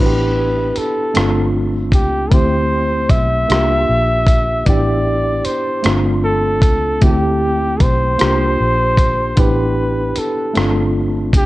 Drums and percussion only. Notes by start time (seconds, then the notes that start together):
0.76 closed hi-hat
1.15 cross-stick, closed hi-hat
1.92 kick, closed hi-hat
2.32 kick, closed hi-hat
3.10 kick, closed hi-hat
3.50 cross-stick, closed hi-hat
4.27 kick, closed hi-hat
4.66 kick, closed hi-hat
5.45 closed hi-hat
5.84 cross-stick, closed hi-hat
6.62 kick, closed hi-hat
7.01 kick, closed hi-hat
7.80 kick, closed hi-hat
8.19 cross-stick, closed hi-hat
8.97 kick, closed hi-hat
9.37 kick, closed hi-hat
10.16 closed hi-hat
10.55 cross-stick, closed hi-hat
11.33 kick, closed hi-hat